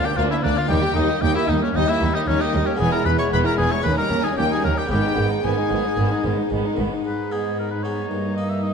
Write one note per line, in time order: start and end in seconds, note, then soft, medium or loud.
0.00 0.15 D2 medium
0.00 0.64 A#3 medium
0.00 0.17 D4 medium
0.00 0.65 F4 medium
0.05 0.18 A#3 medium
0.05 0.19 G4 medium
0.05 0.18 G5 loud
0.16 0.26 D2 medium
0.16 0.41 D2 medium
0.16 0.29 A#3 medium
0.16 0.30 D4 medium
0.16 0.29 F4 medium
0.16 0.23 F5 loud
0.30 0.44 A#3 medium
0.30 0.43 D4 medium
0.30 0.44 E4 medium
0.30 0.37 E5 loud
0.43 0.52 D2 medium
0.43 0.68 D2 medium
0.43 0.56 A#3 medium
0.43 0.58 D4 medium
0.43 0.57 D4 medium
0.43 0.57 D5 loud
0.55 0.70 A#3 medium
0.55 0.69 D4 medium
0.55 0.69 F4 medium
0.55 0.70 F5 loud
0.66 0.78 D#2 medium
0.66 0.82 G3 medium
0.66 2.74 A#3 medium
0.66 0.81 D#4 medium
0.66 2.75 D#4 medium
0.66 0.95 G4 medium
0.66 0.95 G5 loud
0.71 0.94 D#2 medium
0.81 0.96 A#3 medium
0.81 0.95 G4 medium
0.94 1.04 D#2 medium
0.94 1.05 D#2 medium
0.94 1.20 D#2 medium
0.94 1.09 G3 medium
0.94 1.08 D#4 medium
0.94 1.23 D#4 medium
0.94 1.23 D#5 loud
1.07 1.22 A#3 medium
1.07 1.21 G4 medium
1.21 1.30 D#2 medium
1.21 1.46 D#2 medium
1.21 1.35 G3 medium
1.21 1.34 D#4 medium
1.21 1.35 G4 medium
1.21 1.35 G5 loud
1.33 1.49 A#3 medium
1.33 1.50 E4 medium
1.33 1.47 G4 medium
1.33 1.49 E5 loud
1.46 1.57 D#2 medium
1.46 1.72 D#2 medium
1.46 1.57 D#2 medium
1.46 1.61 G3 medium
1.46 1.60 D#4 medium
1.46 1.62 D#4 medium
1.46 1.61 D#5 medium
1.60 1.74 A#3 medium
1.60 1.77 C#4 medium
1.60 1.74 G4 medium
1.60 1.68 C#5 medium
1.74 1.98 D#2 medium
1.74 1.83 D#2 medium
1.74 1.87 G3 medium
1.74 1.86 D#4 medium
1.74 1.90 D#4 loud
1.74 1.88 D#5 loud
1.88 2.01 A#3 medium
1.88 2.16 E4 loud
1.88 2.01 G4 medium
1.88 2.14 E5 loud
2.00 2.24 D#2 medium
2.00 2.09 D#2 medium
2.00 2.14 G3 medium
2.00 2.13 D#4 medium
2.13 2.27 A#3 medium
2.13 2.29 D#4 medium
2.13 2.27 G4 medium
2.13 2.20 D#5 loud
2.26 2.50 D#2 medium
2.26 2.35 D#2 medium
2.26 2.36 D#2 medium
2.26 2.40 G3 medium
2.26 2.43 C#4 loud
2.26 2.38 D#4 medium
2.26 2.40 C#5 loud
2.40 2.54 A#3 medium
2.40 2.68 D#4 medium
2.40 2.53 G4 medium
2.40 2.66 D#5 loud
2.53 2.77 D#2 medium
2.53 2.62 D#2 medium
2.53 2.67 G3 medium
2.53 2.66 D#4 medium
2.65 2.80 A#3 medium
2.65 2.79 C#4 medium
2.65 2.79 G4 medium
2.65 2.80 C#5 medium
2.75 3.79 G#3 medium
2.75 3.80 B3 medium
2.75 2.91 B3 medium
2.75 3.81 G#4 medium
2.75 2.92 G#5 loud
2.79 2.88 E1 medium
2.79 3.03 E2 medium
2.79 2.88 E2 medium
2.79 2.93 E3 medium
2.79 2.92 G#4 medium
2.91 3.07 G#3 medium
2.91 3.05 E4 medium
2.91 3.06 A#4 medium
2.91 3.06 A#5 loud
3.04 3.14 E1 medium
3.04 3.13 E2 medium
3.04 3.30 E2 medium
3.04 3.20 E3 medium
3.04 3.18 B3 medium
3.04 3.18 B4 loud
3.04 3.10 B5 loud
3.17 3.33 G#3 medium
3.17 3.31 E4 medium
3.17 3.32 C#5 loud
3.17 3.24 C#6 loud
3.31 3.40 E1 medium
3.31 3.56 E2 medium
3.31 3.41 E2 medium
3.31 3.45 E3 medium
3.31 3.44 B3 medium
3.31 3.47 B4 medium
3.31 3.38 B5 loud
3.45 3.59 G#3 medium
3.45 3.58 E4 medium
3.45 3.57 A#4 medium
3.45 3.58 A#5 medium
3.57 3.67 E1 medium
3.57 3.67 E2 medium
3.57 3.83 E2 medium
3.57 3.71 B3 medium
3.57 3.73 G#4 loud
3.57 3.71 G#5 loud
3.61 3.73 E3 medium
3.70 3.85 G#3 medium
3.70 3.84 E4 medium
3.70 3.82 C#5 medium
3.70 3.85 C#6 loud
3.81 4.08 D#2 medium
3.81 3.93 D#2 medium
3.81 3.97 A#3 medium
3.81 4.86 C#4 medium
3.81 3.96 C#4 medium
3.81 4.87 D#4 medium
3.81 3.97 B4 medium
3.81 3.98 B5 loud
3.96 4.11 G3 medium
3.96 4.10 D#4 medium
3.96 4.26 A#4 loud
3.96 4.23 A#5 loud
4.10 4.19 D#2 medium
4.10 4.35 D#2 medium
4.10 4.19 D#2 medium
4.10 4.24 A#3 medium
4.10 4.24 C#4 medium
4.22 4.38 G3 medium
4.22 4.37 D#4 medium
4.22 4.37 G#4 medium
4.22 4.38 G#5 loud
4.35 4.61 D#2 medium
4.35 4.45 D#2 medium
4.35 4.46 D#2 medium
4.35 4.50 A#3 medium
4.35 4.49 C#4 medium
4.35 4.44 G4 medium
4.35 4.51 G5 loud
4.48 4.64 G3 medium
4.48 4.63 D#4 medium
4.48 4.64 G#4 medium
4.48 4.64 G#5 loud
4.61 4.72 D#2 medium
4.61 4.88 D#2 medium
4.61 4.72 D#2 medium
4.61 4.77 A#3 medium
4.61 4.76 C#4 medium
4.61 4.80 A#4 medium
4.61 4.78 A#5 loud
4.74 4.91 G3 medium
4.74 4.89 D#4 medium
4.74 4.89 G5 medium
4.78 4.90 G4 medium
4.86 6.98 G#3 medium
4.86 6.99 B3 medium
4.86 5.02 B3 medium
4.86 7.00 D#4 medium
4.90 4.98 G#1 medium
4.90 5.15 G#2 medium
4.90 5.00 G#2 medium
4.90 5.03 D#3 medium
4.90 5.25 G4 medium
4.90 5.43 G5 loud
5.02 5.17 G#3 medium
5.02 5.17 D#4 medium
5.14 5.25 G#1 medium
5.14 5.41 G#2 medium
5.14 5.31 D#3 medium
5.14 5.30 B3 medium
5.18 5.26 G#2 medium
5.28 5.44 G#3 medium
5.28 5.43 D#4 medium
5.42 5.52 G#1 medium
5.42 5.68 G#2 medium
5.42 5.53 G#2 medium
5.42 5.57 D#3 medium
5.42 5.56 B3 medium
5.42 6.48 G#4 medium
5.42 6.52 G#5 medium
5.57 5.71 G#3 medium
5.57 5.71 D#4 medium
5.70 5.79 G#1 medium
5.70 5.95 G#2 medium
5.70 5.80 G#2 medium
5.70 5.85 D#3 medium
5.70 5.84 B3 medium
5.84 5.98 G#3 medium
5.84 5.98 D#4 medium
5.97 6.06 G#1 medium
5.97 6.22 G#2 medium
5.97 6.06 G#2 medium
5.97 6.10 D#3 medium
5.97 6.11 B3 medium
6.10 6.24 G#3 medium
6.10 6.25 D#4 medium
6.23 6.32 G#1 medium
6.23 6.48 G#2 medium
6.23 6.33 G#2 medium
6.23 6.37 D#3 medium
6.23 6.38 B3 medium
6.37 6.51 G#3 medium
6.37 6.52 D#4 medium
6.50 6.59 G#1 medium
6.50 6.75 G#2 medium
6.50 6.60 G#2 medium
6.50 6.63 D#3 medium
6.50 6.65 B3 medium
6.63 6.78 G#3 medium
6.63 6.79 D#4 medium
6.76 6.86 G#1 medium
6.76 7.02 G#2 medium
6.76 6.88 G#2 medium
6.76 6.91 D#3 medium
6.76 6.92 B3 medium
6.90 7.03 G#3 medium
6.90 7.06 D#4 medium
7.04 8.06 G#2 soft
7.04 8.07 G#2 soft
7.04 8.06 G#3 soft
7.04 8.74 D#4 soft
7.04 7.33 B4 medium
7.04 8.06 B5 soft
7.32 7.70 G#3 soft
7.32 7.70 B3 soft
7.32 7.70 D#4 soft
7.32 7.58 G#4 medium
7.59 7.70 A#4 soft
7.71 7.85 B4 medium
7.83 8.04 G#3 soft
7.83 8.04 B3 soft
7.83 8.04 D#4 soft
7.83 8.36 C#5 medium
8.09 8.74 G2 soft
8.09 8.74 A#3 soft
8.09 8.74 A#5 soft
8.37 8.74 A#3 soft
8.37 8.74 D#4 soft
8.37 8.51 D#5 medium
8.50 8.65 E5 medium
8.63 8.74 D#5 medium